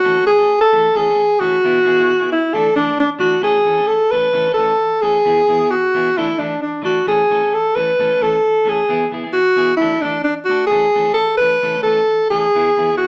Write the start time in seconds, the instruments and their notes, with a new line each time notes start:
Already playing: alto saxophone F#4
0.04 clean electric guitar E3 A3 C#4 A4
0.17 clean electric guitar A3 C#4 A4
0.26 alto saxophone G#4
0.38 clean electric guitar A3 C#4 A4
0.61 alto saxophone A4
0.72 clean electric guitar E3 A3 A4, muted clean electric guitar stroke
0.95 clean electric guitar E3 A3 C#4 A4, alto saxophone G#4
1.08 clean electric guitar A3 C#4 A4
1.40 clean electric guitar E3 A3 C#4 A4, alto saxophone F#4
1.64 clean electric guitar E3 B3 E4, muted clean electric guitar stroke
1.84 clean electric guitar E3 B3 E4 G#4
1.97 clean electric guitar B3 E4 G#4
2.20 clean electric guitar B3 E4 G#4
2.32 alto saxophone E4
2.54 clean electric guitar E3 A3 D4 A4, alto saxophone A4
2.75 clean electric guitar E3 A3 D4 A4, alto saxophone D4
2.86 clean electric guitar A3 D4 A4
3.00 alto saxophone D4
3.19 clean electric guitar E3 A3 D4 A4, alto saxophone F#4
3.41 clean electric guitar E3 A3 C#4 A4, alto saxophone G#4
3.65 clean electric guitar E3 C#4 A4, muted clean electric guitar stroke
3.78 clean electric guitar A3 C#4 A4
3.87 alto saxophone A4
4.12 clean electric guitar E3 A3 C#4 A4, alto saxophone B4
4.33 clean electric guitar E3 A3 C#4 A4
4.46 clean electric guitar A3 C#4 A4
4.54 clean electric guitar E3, alto saxophone A4
4.58 clean electric guitar A3 C#4 A4
5.01 clean electric guitar E3 A3 C#4 A4, alto saxophone G#4
5.25 clean electric guitar E3 B3 E4 G#4
5.48 clean electric guitar E3 B3 E4 G#4
5.60 clean electric guitar B3 E4 G#4
5.71 alto saxophone F#4
5.94 clean electric guitar E3 B3 E4 G#4
6.17 clean electric guitar E3 A3 D4 A4, alto saxophone E4
6.28 clean electric guitar A4, muted clean electric guitar stroke
6.38 clean electric guitar E3 A3 D4 A4, alto saxophone D4
6.62 alto saxophone D4
6.82 clean electric guitar E3 A3 D4 A4, alto saxophone F#4
7.07 clean electric guitar E3 A3 C#4 A4, alto saxophone G#4
7.30 clean electric guitar E3 A3 C#4 A4
7.40 clean electric guitar A3 C#4 A4
7.54 alto saxophone A4
7.76 clean electric guitar E3 A3 C#4 A4, alto saxophone B4
7.99 clean electric guitar E3 A3 C#4 A4
8.11 clean electric guitar A3 C#4 A4
8.21 clean electric guitar E3 A3 C#4 A4, alto saxophone A4
8.64 clean electric guitar E3 A3 C#4 A4
8.69 alto saxophone G#4
8.89 clean electric guitar E3 B3 E4 G#4
9.11 clean electric guitar E3 B3 E4 G#4
9.24 clean electric guitar B3 E4 G#4
9.33 alto saxophone F#4
9.56 clean electric guitar E3 B3 E4 G#4
9.77 clean electric guitar E3, alto saxophone E4
9.81 clean electric guitar A3 D4 A4
9.93 clean electric guitar A3 D4 A4
10.01 clean electric guitar E3 A3 D4 A4, alto saxophone D4
10.24 alto saxophone D4
10.45 alto saxophone F#4, muted clean electric guitar stroke
10.49 clean electric guitar A3 D4 A4
10.67 alto saxophone G#4
10.71 clean electric guitar E3 A3 C#4 A4
10.95 clean electric guitar E3 A3 C#4 A4
11.05 clean electric guitar A3 C#4 A4
11.14 alto saxophone A4
11.37 clean electric guitar E3, alto saxophone B4
11.42 clean electric guitar A3 C#4 A4
11.63 clean electric guitar E3 A3 C#4 A4
11.74 clean electric guitar A3 C#4 A4
11.83 clean electric guitar E3, alto saxophone A4
11.87 clean electric guitar A3 C#4 A4
12.30 clean electric guitar E3 A3 C#4 A4, alto saxophone G#4
12.55 clean electric guitar E3 B3 E4 G#4
12.77 clean electric guitar E3 B3 E4 G#4
12.90 clean electric guitar B3 E4 G#4
12.97 alto saxophone F#4